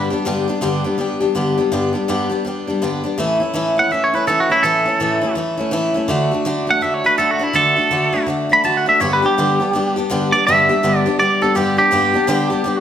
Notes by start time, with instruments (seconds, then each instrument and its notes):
Already playing: steel-string acoustic guitar G2 D3 G3 B3 D4
0.10 steel-string acoustic guitar G3 B3 D4 G4
0.25 steel-string acoustic guitar G2 D3 G3 B3 D4 G4
0.48 steel-string acoustic guitar G3 B3 D4 G4
0.61 steel-string acoustic guitar G2 D3 G3 B3 D4 G4
0.84 steel-string acoustic guitar G3 B3 D4 G4
0.98 steel-string acoustic guitar G3 B3 D4 G4
1.20 steel-string acoustic guitar G3 B3 D4 G4
1.35 steel-string acoustic guitar G2 D3 G3 B3 D4 G4
1.57 steel-string acoustic guitar G3 B3 D4 G4
1.72 steel-string acoustic guitar G2 D3 G3 B3 D4 G4
1.93 steel-string acoustic guitar G3 B3 D4 G4
2.08 steel-string acoustic guitar G2 D3 G3 B3 D4 G4
2.29 steel-string acoustic guitar G3 B3 D4 G4
2.45 steel-string acoustic guitar G3 B3 D4 G4
2.67 steel-string acoustic guitar G3 B3 D4 G4
2.82 steel-string acoustic guitar G2 D3 G3 B3 D4 G4
3.04 steel-string acoustic guitar G3 B3 D4 G4
3.18 steel-string acoustic guitar A2 E3 A3 C#4 E4
3.40 steel-string acoustic guitar A3 C#4 E4
3.54 steel-string acoustic guitar A2 E3 A3 C#4 E4
3.77 steel-string acoustic guitar A3 C#4 E4, clean electric guitar F#5
3.91 steel-string acoustic guitar E3 A3 C#4 E4, clean electric guitar E5
4.04 clean electric guitar C#5
4.14 steel-string acoustic guitar A3 C#4 E4, clean electric guitar B4
4.27 steel-string acoustic guitar A2 E3 A3 C#4 E4, clean electric guitar A4
4.40 clean electric guitar F#4
4.50 steel-string acoustic guitar A3 C#4 E4, clean electric guitar E4
4.63 steel-string acoustic guitar A2 E3 A3 C#4 E4, clean electric guitar A4
4.86 steel-string acoustic guitar A3 C#4 E4
5.00 steel-string acoustic guitar A2 E3 A3 C#4 E4
5.21 steel-string acoustic guitar A3 C#4 E4
5.35 steel-string acoustic guitar E3 A3 C#4 E4
5.57 steel-string acoustic guitar A3 C#4 E4
5.71 steel-string acoustic guitar A2 E3 A3 C#4 E4
5.94 steel-string acoustic guitar A3 C#4 E4
6.08 steel-string acoustic guitar D3 A3 D4 F#4
6.31 steel-string acoustic guitar A3 D4 F#4
6.45 steel-string acoustic guitar D3 A3 D4 F#4
6.67 steel-string acoustic guitar A3 D4 F#4, clean electric guitar F#5
6.81 steel-string acoustic guitar D3 A3 D4 F#4, clean electric guitar E5
6.94 clean electric guitar C#5
7.04 steel-string acoustic guitar A3 D4 F#4, clean electric guitar B4
7.18 steel-string acoustic guitar D3 A3 D4 F#4, clean electric guitar A4
7.31 clean electric guitar F#4
7.39 steel-string acoustic guitar A3 D4 F#4
7.43 clean electric guitar E4
7.53 steel-string acoustic guitar D3 A3 D4 F#4, clean electric guitar A4
7.76 steel-string acoustic guitar A3 D4 F#4
7.91 steel-string acoustic guitar D3 A3 D4 F#4
8.12 steel-string acoustic guitar A3 D4 F#4
8.26 steel-string acoustic guitar D3 A3 D4 F#4
8.49 steel-string acoustic guitar A3 D4 F#4, clean electric guitar B5
8.64 steel-string acoustic guitar D3 A3 D4 F#4, clean electric guitar A5
8.77 clean electric guitar F#5
8.86 steel-string acoustic guitar A3 D4 F#4, clean electric guitar E5
9.00 steel-string acoustic guitar G2 D3 G3 B3 D4 G4, clean electric guitar C#5
9.13 clean electric guitar B4
9.22 steel-string acoustic guitar G3 B3 D4 G4, clean electric guitar G4
9.38 steel-string acoustic guitar G2 D3 G3 B3 D4 G4
9.60 steel-string acoustic guitar G3 B3 D4 G4
9.73 steel-string acoustic guitar G3 B3 D4 G4
9.96 steel-string acoustic guitar G3 B3 D4 G4
10.10 steel-string acoustic guitar G2 D3 G3 B3 D4 G4
10.32 steel-string acoustic guitar G3 B3 D4 G4, clean electric guitar D5
10.47 steel-string acoustic guitar G2 D3 G3 B3 D4 G4, clean electric guitar E5
10.69 steel-string acoustic guitar G3 B3 D4 G4
10.83 steel-string acoustic guitar G2 D3 G3 B3 D4 G4
10.98 clean electric guitar D5
11.06 steel-string acoustic guitar G3 B3 D4 G4
11.19 steel-string acoustic guitar G3 B3 D4 G4, clean electric guitar D5
11.42 steel-string acoustic guitar G3 B3 D4 G4, clean electric guitar A4
11.55 steel-string acoustic guitar G2 D3 G3 B3 D4 G4, clean electric guitar G4
11.77 steel-string acoustic guitar G3 B3 D4 G4, clean electric guitar G4
11.91 steel-string acoustic guitar G2 D3 G3 B3 D4 G4
12.14 steel-string acoustic guitar G3 B3 D4 G4
12.27 steel-string acoustic guitar G2 D3 G3 B3 D4 G4
12.50 steel-string acoustic guitar G3 B3 D4 G4
12.64 steel-string acoustic guitar G3 B3 D4 G4